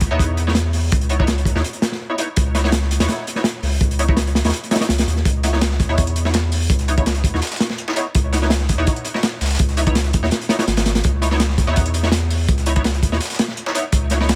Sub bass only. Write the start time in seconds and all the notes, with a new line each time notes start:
0.11 D#2
0.19 E2
0.92 C#2
1.55 D#2
2.37 C#2
3.00 D#2
3.63 C#2
3.81 C#2
4.44 D#2
4.89 C#2
5.07 D#2
5.25 C#2
5.89 D#2
5.98 E2
6.70 C#2
7.34 D#2
8.15 C#2
8.78 D#2
9.41 C#2
9.60 C#2
10.23 D#2
10.67 G#1
11.05 C#2
11.67 D#2
11.77 E2
12.49 C#2
13.12 D#2
13.93 C#2